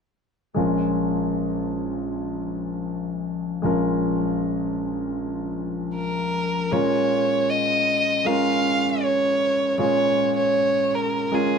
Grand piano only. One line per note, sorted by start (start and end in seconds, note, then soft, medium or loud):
0.54 3.60 A#1 soft
0.54 3.60 A#2 soft
0.54 3.59 G#3 soft
0.54 3.60 C#4 soft
0.54 3.60 F4 soft
0.54 3.61 A#4 soft
3.62 6.68 A#1 soft
3.62 6.67 A#2 soft
3.62 6.67 G#3 soft
3.62 6.67 C#4 soft
3.62 6.68 F4 soft
3.62 6.68 A#4 medium
6.71 7.83 A#2 soft
6.71 8.18 G#3 medium
6.71 8.18 C#4 soft
6.71 8.18 F4 soft
6.71 8.18 A#4 medium
8.25 9.71 G#3 medium
8.25 9.72 C#4 medium
8.25 9.72 F4 soft
8.25 9.72 A#4 medium
9.78 10.90 A#2 soft
9.78 11.25 G#3 medium
9.78 11.25 C#4 soft
9.78 11.25 F4 soft
9.78 11.26 G#4 medium
11.32 11.58 G#3 medium
11.32 11.58 C#4 medium
11.32 11.58 F4 medium
11.32 11.58 A#4 medium